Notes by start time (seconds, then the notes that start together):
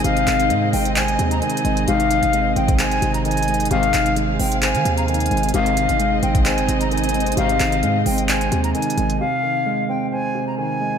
Already playing: C3 D#3 G#3 C4 D#4 G#4 C5 D#5
0.04 G#1 C3 F5, closed hi-hat
0.17 closed hi-hat
0.27 G#1 D#3, clap, closed hi-hat
0.40 closed hi-hat
0.50 G#2 G#3, closed hi-hat
0.73 G#1 C4 G5, open hi-hat
0.85 closed hi-hat
0.96 C5 G#5, clap, closed hi-hat
1.08 closed hi-hat
1.19 D#2 C3, closed hi-hat
1.31 A#5, closed hi-hat
1.42 D#3 G#5, closed hi-hat
1.50 closed hi-hat
1.57 closed hi-hat
1.65 G#1 G#3, closed hi-hat
1.77 closed hi-hat
1.88 G#1 G#2 C3 D#3 G#4 F5, closed hi-hat
2.00 closed hi-hat
2.10 D#3, closed hi-hat
2.23 G#1, closed hi-hat
2.33 G#3, closed hi-hat
2.56 G#1 C4 G5, closed hi-hat
2.68 kick, closed hi-hat
2.79 C5 G#5, clap, closed hi-hat
2.91 closed hi-hat
3.02 G#1 C3, closed hi-hat
3.14 A#5, closed hi-hat
3.25 D#3 G#5, closed hi-hat
3.31 closed hi-hat
3.37 closed hi-hat
3.43 closed hi-hat
3.48 G#3, closed hi-hat
3.54 closed hi-hat
3.60 closed hi-hat
3.65 closed hi-hat
3.71 G#1 G#2 C3 D#3 F5, closed hi-hat
3.83 closed hi-hat
3.94 G#1 D#3, clap, closed hi-hat
4.06 closed hi-hat
4.16 G#3, closed hi-hat
4.39 G#1 C4 G5, open hi-hat
4.52 closed hi-hat
4.62 C5 G#5, clap, closed hi-hat
4.75 D#3, closed hi-hat
4.85 D#2 C3, closed hi-hat
4.97 A#5, closed hi-hat
5.08 D#3 G#5, closed hi-hat
5.14 closed hi-hat
5.20 closed hi-hat
5.26 closed hi-hat
5.31 G#1 G#3, closed hi-hat
5.37 closed hi-hat
5.43 closed hi-hat
5.49 closed hi-hat
5.54 G#1 G#2 C3 D#3 C4 D#4 D#5 F5, closed hi-hat
5.66 closed hi-hat
5.77 D#3, closed hi-hat
5.89 G#1, closed hi-hat
6.00 G#3, closed hi-hat
6.23 G#1 C4 G5, closed hi-hat
6.35 kick, closed hi-hat
6.46 C5 G#5, clap, closed hi-hat
6.58 G1, closed hi-hat
6.68 G#1 C3, closed hi-hat
6.81 A#5, closed hi-hat
6.91 D#3 G#5, closed hi-hat
6.97 closed hi-hat
7.04 closed hi-hat
7.09 closed hi-hat
7.14 G#3, closed hi-hat
7.20 closed hi-hat
7.26 closed hi-hat
7.32 closed hi-hat
7.37 G#1 G#2 C3 D#3 F5, closed hi-hat
7.49 closed hi-hat
7.60 G#1 D#3, clap, closed hi-hat
7.72 closed hi-hat
7.83 G#2 G#3, closed hi-hat
8.06 G#1 C4 G5, open hi-hat
8.18 closed hi-hat
8.29 C5 G#5, clap, closed hi-hat
8.41 closed hi-hat
8.52 D#2 C3, closed hi-hat
8.64 A#5, closed hi-hat
8.74 D#3 G#5, closed hi-hat
8.82 closed hi-hat
8.90 closed hi-hat
8.98 G#1 G#3, closed hi-hat
9.10 closed hi-hat
9.20 C3 F5
9.43 D#3
9.66 G#3
9.89 C4 G5
10.12 C5 G#5
10.35 C3
10.47 A#5
10.58 D#3 G#5
10.81 G#3